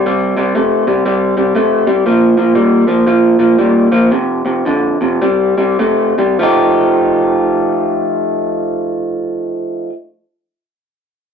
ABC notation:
X:1
M:4/4
L:1/8
Q:"Swing" 1/4=106
K:Fmix
V:1 name="Clean electric guitar" clef=bass
[C,G,] [C,G,] [C,A,] [C,G,] [C,G,] [C,G,] [C,A,] [C,G,] | [B,,F,] [B,,F,] [B,,G,] [B,,F,] [B,,F,] [B,,F,] [B,,G,] [B,,F,] | [F,,C,] [F,,C,] [F,,D,] [F,,C,] [C,G,] [C,G,] [C,A,] [C,G,] | [F,A,EG]8- |
[F,A,EG]8 |]